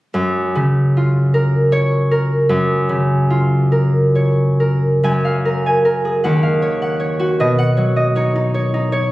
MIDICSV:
0, 0, Header, 1, 2, 480
1, 0, Start_track
1, 0, Key_signature, 6, "major"
1, 0, Tempo, 827586
1, 81, Time_signature, 6, 3, 24, 8
1, 558, Tempo, 780234
1, 1998, Tempo, 841515
1, 2478, Tempo, 899550
1, 2958, Tempo, 811908
1, 3438, Tempo, 763359
1, 5489, End_track
2, 0, Start_track
2, 0, Title_t, "Harp"
2, 0, Program_c, 0, 46
2, 81, Note_on_c, 0, 42, 49
2, 321, Note_on_c, 0, 49, 40
2, 562, Note_on_c, 0, 65, 40
2, 790, Note_on_c, 0, 70, 46
2, 1025, Note_on_c, 0, 73, 69
2, 1259, Note_off_c, 0, 70, 0
2, 1266, Note_on_c, 0, 70, 53
2, 1492, Note_off_c, 0, 42, 0
2, 1500, Note_on_c, 0, 42, 67
2, 1738, Note_off_c, 0, 49, 0
2, 1745, Note_on_c, 0, 49, 52
2, 1991, Note_off_c, 0, 65, 0
2, 1998, Note_on_c, 0, 65, 50
2, 2228, Note_off_c, 0, 70, 0
2, 2235, Note_on_c, 0, 70, 52
2, 2476, Note_off_c, 0, 73, 0
2, 2483, Note_on_c, 0, 73, 46
2, 2715, Note_off_c, 0, 70, 0
2, 2721, Note_on_c, 0, 70, 42
2, 2948, Note_off_c, 0, 42, 0
2, 2953, Note_on_c, 0, 42, 53
2, 2958, Note_on_c, 0, 80, 66
2, 2976, Note_off_c, 0, 49, 0
2, 3078, Note_on_c, 0, 77, 44
2, 3193, Note_off_c, 0, 70, 0
2, 3200, Note_on_c, 0, 70, 46
2, 3317, Note_off_c, 0, 80, 0
2, 3324, Note_on_c, 0, 80, 47
2, 3427, Note_off_c, 0, 70, 0
2, 3434, Note_on_c, 0, 70, 50
2, 3559, Note_on_c, 0, 68, 43
2, 3678, Note_on_c, 0, 78, 64
2, 3683, Note_on_c, 0, 39, 57
2, 3704, Note_off_c, 0, 42, 0
2, 3704, Note_off_c, 0, 68, 0
2, 3708, Note_off_c, 0, 80, 0
2, 3790, Note_off_c, 0, 77, 0
2, 3797, Note_on_c, 0, 77, 41
2, 3912, Note_off_c, 0, 73, 0
2, 3919, Note_on_c, 0, 73, 52
2, 4036, Note_off_c, 0, 78, 0
2, 4043, Note_on_c, 0, 78, 50
2, 4148, Note_off_c, 0, 73, 0
2, 4155, Note_on_c, 0, 73, 47
2, 4280, Note_on_c, 0, 66, 49
2, 4285, Note_off_c, 0, 65, 0
2, 4408, Note_on_c, 0, 47, 57
2, 4411, Note_on_c, 0, 75, 50
2, 4417, Note_off_c, 0, 77, 0
2, 4421, Note_off_c, 0, 39, 0
2, 4421, Note_off_c, 0, 70, 0
2, 4518, Note_off_c, 0, 78, 0
2, 4525, Note_on_c, 0, 78, 63
2, 4633, Note_off_c, 0, 73, 0
2, 4640, Note_on_c, 0, 73, 49
2, 4645, Note_on_c, 0, 54, 43
2, 4756, Note_off_c, 0, 75, 0
2, 4764, Note_on_c, 0, 75, 52
2, 4880, Note_off_c, 0, 73, 0
2, 4884, Note_on_c, 0, 63, 48
2, 4887, Note_on_c, 0, 73, 53
2, 5002, Note_off_c, 0, 63, 0
2, 5010, Note_on_c, 0, 63, 49
2, 5120, Note_off_c, 0, 73, 0
2, 5128, Note_on_c, 0, 73, 51
2, 5243, Note_off_c, 0, 63, 0
2, 5250, Note_on_c, 0, 63, 47
2, 5359, Note_off_c, 0, 73, 0
2, 5366, Note_on_c, 0, 73, 56
2, 5481, Note_off_c, 0, 75, 0
2, 5489, Note_off_c, 0, 47, 0
2, 5489, Note_off_c, 0, 54, 0
2, 5489, Note_off_c, 0, 63, 0
2, 5489, Note_off_c, 0, 66, 0
2, 5489, Note_off_c, 0, 73, 0
2, 5489, Note_off_c, 0, 78, 0
2, 5489, End_track
0, 0, End_of_file